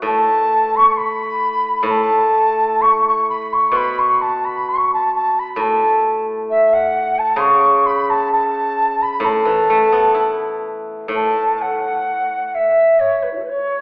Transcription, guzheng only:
0.00 1.81 A2 medium
0.00 0.93 E3 medium
0.00 0.26 B3 soft
0.00 0.49 E4 medium
0.00 0.71 F#4 medium
0.00 0.94 B4 soft
1.83 3.72 A2 medium
3.71 5.58 B2 medium
5.56 7.39 A2 medium
7.36 9.22 C#3 medium
9.20 11.07 A2 medium
9.45 11.35 E3 medium
9.70 11.60 A3 medium
9.92 11.82 B3 soft
10.14 12.05 E4 medium
11.08 13.81 A2 medium

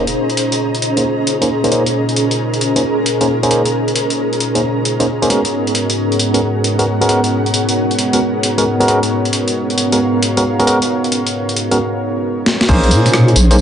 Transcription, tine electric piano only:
0.97 1.02 A#3 medium
0.97 1.02 C#4 medium
0.97 1.02 D#4 medium
0.97 1.02 G#4 medium
0.97 1.02 C5 medium
1.41 1.47 A#3 medium
1.41 1.47 C#4 medium
1.41 1.47 D#4 medium
1.41 1.47 G#4 medium
1.41 1.47 C5 medium
1.64 1.70 A#3 loud
1.64 1.70 C#4 medium
1.64 1.70 D#4 medium
1.64 1.70 G#4 medium
1.64 1.70 C5 loud
1.72 1.82 A#3 medium
1.72 1.82 C#4 medium
1.72 1.82 D#4 medium
1.72 1.82 G#4 medium
1.72 1.82 C5 medium
2.76 2.81 A#3 medium
2.76 2.81 C#4 medium
2.76 2.81 D#4 medium
2.76 2.81 G#4 medium
2.76 2.81 C5 medium
3.21 3.26 A#3 medium
3.21 3.26 C#4 medium
3.21 3.26 D#4 medium
3.21 3.26 G#4 medium
3.21 3.26 C5 medium
3.43 3.49 A#3 medium
3.43 3.49 C#4 medium
3.43 3.49 D#4 medium
3.43 3.49 G#4 medium
3.43 3.49 C5 loud
3.51 3.61 A#3 medium
3.51 3.61 C#4 medium
3.51 3.61 D#4 medium
3.51 3.61 G#4 medium
3.51 3.61 C5 medium
4.55 4.60 A#3 medium
4.55 4.60 C#4 medium
4.55 4.60 D#4 medium
4.55 4.60 G#4 medium
4.55 4.60 C5 medium
5.00 5.05 A#3 medium
5.00 5.05 C#4 medium
5.00 5.05 D#4 medium
5.00 5.05 G#4 medium
5.00 5.05 C5 medium
5.22 5.28 A#3 medium
5.22 5.28 C#4 medium
5.22 5.28 D#4 medium
5.22 5.28 G#4 medium
5.22 5.28 C5 loud
5.30 5.40 G#3 medium
5.30 5.40 B3 medium
5.30 5.40 C#4 medium
5.30 5.40 F#4 medium
5.30 5.40 A#4 medium
6.34 6.39 G#3 medium
6.34 6.39 B3 medium
6.34 6.39 C#4 medium
6.34 6.39 F#4 medium
6.34 6.39 A#4 medium
6.79 6.84 G#3 medium
6.79 6.84 B3 medium
6.79 6.84 C#4 medium
6.79 6.84 F#4 medium
6.79 6.84 A#4 medium
7.01 7.07 G#3 loud
7.01 7.07 B3 medium
7.01 7.07 C#4 medium
7.01 7.07 F#4 medium
7.01 7.07 A#4 loud
7.09 7.19 G#3 medium
7.09 7.19 B3 medium
7.09 7.19 C#4 medium
7.09 7.19 F#4 medium
7.09 7.19 A#4 medium
8.13 8.18 G#3 medium
8.13 8.18 B3 medium
8.13 8.18 C#4 medium
8.13 8.18 F#4 medium
8.13 8.18 A#4 medium
8.58 8.63 G#3 medium
8.58 8.63 B3 medium
8.58 8.63 C#4 medium
8.58 8.63 F#4 medium
8.58 8.63 A#4 medium
8.80 8.86 G#3 medium
8.80 8.86 B3 medium
8.80 8.86 C#4 medium
8.80 8.86 F#4 medium
8.80 8.86 A#4 loud
8.88 8.98 G#3 medium
8.88 8.98 B3 medium
8.88 8.98 C#4 medium
8.88 8.98 F#4 medium
8.88 8.98 A#4 medium
9.92 9.98 G#3 medium
9.92 9.98 B3 medium
9.92 9.98 C#4 medium
9.92 9.98 F#4 medium
9.92 9.98 A#4 medium
10.37 10.42 G#3 medium
10.37 10.42 B3 medium
10.37 10.42 C#4 medium
10.37 10.42 F#4 medium
10.37 10.42 A#4 medium
10.59 10.65 G#3 medium
10.59 10.65 B3 medium
10.59 10.65 C#4 medium
10.59 10.65 F#4 medium
10.59 10.65 A#4 loud
10.67 10.77 G#3 medium
10.67 10.77 B3 medium
10.67 10.77 C#4 medium
10.67 10.77 F#4 medium
10.67 10.77 A#4 medium
11.71 11.77 G#3 medium
11.71 11.77 B3 medium
11.71 11.77 C#4 medium
11.71 11.77 F#4 medium
11.71 11.77 A#4 medium
12.69 13.36 A#3 loud
12.69 13.36 C#4 medium
12.69 13.36 D#4 medium
12.69 13.36 G#4 medium
12.69 13.36 C5 loud
13.51 13.56 A#3 medium
13.51 13.56 C#4 medium
13.51 13.56 D#4 medium
13.51 13.56 G#4 medium
13.51 13.56 C5 medium

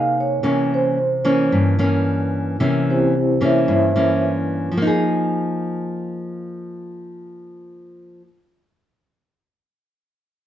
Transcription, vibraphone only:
0.00 0.18 F5 medium
0.20 0.69 C#5 medium
0.74 1.49 C5 medium
2.90 3.39 C4 soft
2.90 3.39 E4 medium
2.90 3.39 G4 medium
2.90 3.39 C5 medium
3.44 3.69 E4 medium
3.44 3.69 C5 medium
3.44 3.69 C#5 medium
3.44 3.69 E5 medium
3.72 4.21 E4 soft
3.72 4.21 C5 soft
3.72 4.21 C#5 soft
3.72 4.21 E5 medium

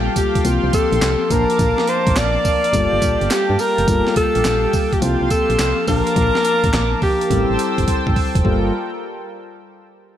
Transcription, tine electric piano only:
0.00 0.42 G3 medium
0.00 0.42 A#3 medium
0.00 0.43 F4 medium
0.00 0.43 A4 medium
0.44 0.53 E3 medium
0.44 1.29 A#3 medium
0.44 1.31 C4 medium
0.44 1.31 G4 medium
0.51 1.28 F3 medium
1.30 2.70 F3 medium
1.30 2.70 A#3 medium
1.30 2.71 D4 medium
1.30 2.71 A5 medium
2.72 3.85 G3 medium
2.72 3.85 A#3 medium
2.72 3.86 F4 medium
2.72 3.86 A4 medium
3.87 4.99 G3 medium
3.87 5.00 A#3 medium
3.87 5.00 F4 medium
3.87 5.00 A4 medium
5.01 5.85 F3 medium
5.01 5.86 A#3 medium
5.01 5.88 C4 medium
5.01 5.88 G4 medium
5.87 7.27 F3 medium
5.87 7.27 A#3 medium
5.87 7.28 D4 medium
5.87 7.28 A5 medium
7.29 8.42 G3 medium
7.29 8.42 C4 medium
7.29 8.43 E4 medium
7.29 8.43 A4 medium
8.45 8.71 G3 medium
8.45 8.71 A#3 medium
8.45 8.71 F4 medium
8.45 8.71 A4 medium

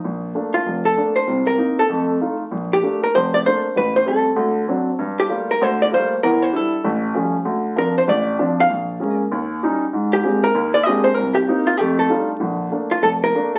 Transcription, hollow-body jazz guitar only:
0.54 0.86 F4 medium
0.85 1.14 A4 medium
1.16 1.48 C5 medium
1.47 1.79 A#4 medium
1.79 2.36 A4 medium
2.73 3.01 G4 medium
3.03 3.14 A#4 medium
3.15 3.32 C5 medium
3.34 3.39 D5 medium
3.46 3.77 C5 medium
3.77 3.94 B4 medium
3.96 4.06 C5 medium
4.08 4.65 A4 medium
5.20 5.51 G4 medium
5.51 5.63 A#4 medium
5.63 5.81 C5 loud
5.82 5.87 D5 loud
5.94 6.23 C5 medium
6.23 6.42 A#4 medium
6.42 6.56 C5 medium
6.56 7.16 A4 medium
7.78 7.97 A#4 medium
7.98 8.03 C5 medium
8.09 8.60 D5 medium
8.60 9.17 F5 medium
10.13 10.44 G4 medium
10.44 10.72 A#4 medium
10.74 10.83 D5 loud
10.83 11.04 D#5 medium
11.04 11.14 C5 medium
11.14 11.35 A#4 medium
11.35 11.66 G4 medium
11.67 11.77 F4 medium
11.77 11.98 G4 medium
11.99 12.27 A4 medium
12.91 13.02 F4 medium
13.03 13.08 A4 medium
13.24 13.51 A#4 loud
13.56 13.59 A4 medium

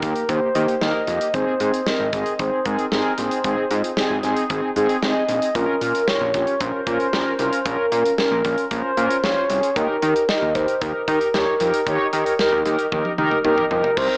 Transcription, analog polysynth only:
0.03 0.23 A#3 medium
0.03 0.23 D#4 medium
0.03 0.23 G4 medium
0.29 0.49 A#3 medium
0.29 0.49 D#4 medium
0.29 0.49 G4 medium
0.55 0.75 A#3 medium
0.55 0.75 D#4 medium
0.55 0.75 G4 loud
0.81 1.02 A#3 loud
0.81 1.02 D#4 medium
0.81 1.02 A#4 loud
1.08 1.28 A#3 medium
1.08 1.28 D#4 medium
1.08 1.28 G4 medium
1.34 1.54 C4 loud
1.34 1.54 D#4 medium
1.34 1.54 G#4 loud
1.60 1.81 C4 medium
1.60 1.81 D#4 medium
1.60 1.81 G#4 medium
1.87 2.07 C4 medium
1.87 2.07 D#4 medium
1.87 2.07 A#4 medium
2.13 2.33 C4 medium
2.13 2.33 D#4 medium
2.13 2.33 G#4 medium
2.39 2.60 C4 medium
2.39 2.60 D#4 medium
2.39 2.60 G#4 medium
2.66 2.86 C4 medium
2.66 2.86 D#4 medium
2.66 2.86 G#4 loud
2.92 3.12 C4 medium
2.92 3.12 D#4 medium
2.92 3.12 G#4 loud
3.18 3.39 C4 medium
3.18 3.39 D#4 medium
3.18 3.39 G#4 medium
3.44 3.65 C4 loud
3.44 3.65 D#4 medium
3.44 3.65 G#4 loud
3.71 3.91 C4 medium
3.71 3.91 D#4 medium
3.71 3.91 F4 medium
3.97 4.17 C4 medium
3.97 4.17 D#4 medium
3.97 4.17 G#4 loud
4.24 4.44 C4 medium
4.24 4.44 D#4 medium
4.24 4.44 G#4 loud
4.50 4.70 C4 medium
4.50 4.70 D#4 medium
4.50 4.70 G#4 loud
4.76 4.96 C4 loud
4.76 4.96 D#4 loud
4.76 4.96 G#4 loud
5.03 5.23 C4 medium
5.03 5.23 D#4 medium
5.03 5.23 G#4 loud
5.29 5.49 C4 medium
5.29 5.49 D#4 medium
5.29 5.49 G#4 medium
5.55 5.75 C#4 medium
5.55 5.75 F4 medium
5.55 5.75 A#4 loud
5.81 6.02 C#4 medium
5.81 6.02 F4 medium
5.81 6.02 A#4 medium
6.08 6.28 C#4 medium
6.08 6.28 F4 medium
6.08 6.28 A#4 medium
6.34 6.54 C#4 medium
6.34 6.54 F4 medium
6.34 6.54 G4 medium
6.61 6.81 C#4 medium
6.61 6.81 F4 medium
6.61 6.81 A#4 medium
6.87 7.07 C#4 medium
6.87 7.07 F4 medium
6.87 7.07 A#4 loud
7.13 7.33 C#4 medium
7.13 7.33 F4 medium
7.13 7.33 A#4 loud
7.39 7.60 C#4 medium
7.39 7.60 F4 medium
7.39 7.60 A#4 loud
7.66 7.86 C#4 loud
7.66 7.86 F4 medium
7.66 7.86 A#4 loud
7.92 8.12 C#4 medium
7.92 8.12 F4 medium
7.92 8.12 A#4 medium
8.18 8.38 C#4 medium
8.18 8.38 F4 medium
8.18 8.38 A#4 medium
8.45 8.65 C#4 medium
8.45 8.65 F4 medium
8.45 8.65 A#4 medium
8.71 8.91 C#4 medium
8.71 8.91 F4 medium
8.71 8.91 A#4 medium
8.97 9.17 C#4 loud
8.97 9.17 F4 medium
8.97 9.17 A#4 loud
9.24 9.44 C#4 medium
9.24 9.44 F4 medium
9.24 9.44 C5 loud
9.50 9.70 C#4 medium
9.50 9.70 F4 medium
9.50 9.70 G#4 medium
9.76 9.96 D#4 loud
9.76 9.96 G4 medium
9.76 9.96 A#4 loud
10.03 10.23 D#4 medium
10.03 10.23 G4 medium
10.03 10.23 A#4 medium
10.29 10.49 D#4 medium
10.29 10.49 G4 medium
10.29 10.49 A#4 medium
10.55 10.75 D#4 medium
10.55 10.75 G4 medium
10.55 10.75 A#4 medium
10.82 11.02 D#4 medium
10.82 11.02 G4 medium
10.82 11.02 A#4 medium
11.08 11.28 D#4 medium
11.08 11.28 G4 medium
11.08 11.28 A#4 loud
11.34 11.54 D#4 medium
11.34 11.54 G4 medium
11.34 11.54 C#5 loud
11.60 11.81 D#4 medium
11.60 11.81 G4 medium
11.60 11.81 A#4 loud
11.87 12.07 D#4 loud
11.87 12.07 G4 loud
11.87 12.07 C#5 loud
12.13 12.33 D#4 medium
12.13 12.33 G4 medium
12.13 12.33 A#4 loud
12.39 12.60 D#4 medium
12.39 12.60 G4 medium
12.39 12.60 A#4 loud
12.66 12.86 D#4 medium
12.66 12.86 G4 medium
12.66 12.86 A#4 loud
12.92 13.12 D#4 medium
12.92 13.12 G4 medium
12.92 13.12 A#4 loud
13.18 13.39 D#4 loud
13.18 13.39 G4 loud
13.18 13.39 A#4 loud
13.45 13.65 D#4 loud
13.45 13.65 G4 loud
13.45 13.65 A#4 loud
13.71 13.91 D#4 medium
13.71 13.91 G4 medium
13.71 13.91 A#4 loud
13.97 14.17 C4 loud
13.97 14.17 D#4 medium
13.97 14.17 A#4 loud

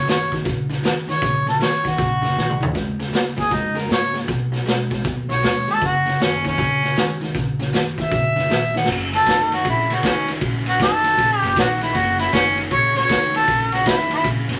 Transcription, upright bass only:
0.07 0.43 F#1 medium
0.45 0.81 A#1 medium
0.83 1.20 C#2 medium
1.22 1.58 A#1 medium
1.60 1.96 F#1 medium
1.99 2.22 A#1 medium
2.22 2.35 F#1 medium
2.36 2.72 A#1 medium
2.75 3.11 C#2 medium
3.13 3.50 C#2 medium
3.51 3.88 F2 medium
3.90 4.26 G#2 medium
4.28 4.64 B1 medium
4.66 5.03 B1 medium
5.05 5.28 D#2 medium
5.29 5.42 B1 medium
5.43 5.79 D#2 medium
5.82 6.18 F#1 medium
6.19 6.56 F#1 medium
6.58 6.94 A#1 medium
6.96 7.32 C#2 medium
7.35 7.71 A#1 medium
7.73 8.09 F#1 medium
8.12 8.35 A#1 medium
8.36 8.49 F#1 medium
8.50 8.86 A#1 medium
8.88 9.24 F#1 medium
9.26 9.63 F#1 medium
9.65 10.01 A#1 medium
10.03 10.39 C#2 medium
10.41 10.77 A#1 medium
10.80 11.16 F#1 medium
11.18 11.41 A#1 medium
11.42 11.55 F#1 medium
11.56 11.92 A#1 medium
11.95 12.31 F#1 loud
12.33 12.69 F#1 medium
12.71 13.07 A#1 medium
13.09 13.46 C#2 medium
13.48 13.84 A#1 medium
13.86 14.22 F#1 medium
14.25 14.48 A#1 medium
14.48 14.60 F#1 medium

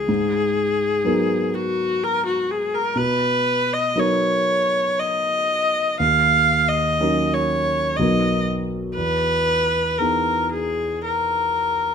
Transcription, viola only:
0.00 1.55 G#4 medium
1.54 2.05 F#4 medium
2.03 2.26 A#4 medium
2.26 2.53 F#4 medium
2.51 2.76 G#4 medium
2.74 2.99 A#4 medium
2.97 3.75 B4 medium
3.73 4.01 D#5 medium
3.99 5.00 C#5 medium
4.99 5.99 D#5 medium
6.00 6.70 F5 medium
6.68 7.35 D#5 medium
7.33 7.98 C#5 medium
7.96 8.45 D#5 medium
8.95 9.99 B4 medium
9.98 10.50 A#4 medium
10.52 11.04 G#4 medium
11.05 11.95 A#4 medium

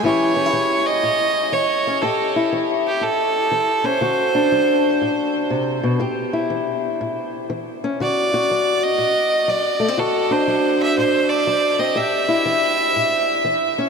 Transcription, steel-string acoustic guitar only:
0.03 0.49 A2 medium
0.03 0.53 E3 medium
0.03 0.35 C#4 medium
0.03 0.36 E4 medium
0.03 2.02 G4 medium
0.36 0.46 C#4 medium
0.46 2.03 E4 medium
0.53 0.99 E3 medium
1.03 1.49 A2 medium
1.52 1.99 E3 medium
1.87 2.01 C#4 medium
2.02 2.49 A2 medium
2.02 4.00 G4 medium
2.36 4.00 E4 medium
2.53 2.99 E3 medium
3.01 3.48 A2 medium
3.51 3.98 E3 medium
3.84 3.99 C#4 medium
4.01 4.48 D3 medium
4.01 6.00 F#4 medium
4.35 5.99 D4 medium
4.52 4.98 F#3 medium
5.02 5.48 A2 medium
5.50 5.83 C3 medium
5.83 6.01 B2 medium
6.00 6.46 A2 medium
6.00 7.97 G4 medium
6.33 7.98 E4 medium
6.50 6.97 E3 medium
7.01 7.47 A2 medium
7.50 7.96 E3 medium
7.84 7.98 C#4 medium
8.00 8.46 D3 medium
8.00 8.33 F#4 medium
8.34 9.97 F#4 medium
8.51 8.96 F#3 medium
8.98 9.45 A2 medium
9.48 9.94 F#3 medium
9.80 9.88 A3 medium
9.88 9.98 C4 medium
9.97 10.44 D3 medium
9.97 11.95 F#4 medium
10.31 11.94 D4 medium
10.48 10.94 F#3 medium
10.98 11.43 A2 medium
11.47 11.93 F#3 medium
11.79 11.94 C4 medium
11.95 12.42 A2 medium
11.95 13.89 G4 medium
12.29 13.89 E4 medium
12.45 12.91 E3 medium
12.96 13.42 A2 medium
13.45 13.89 E3 medium
13.78 13.89 C#4 medium

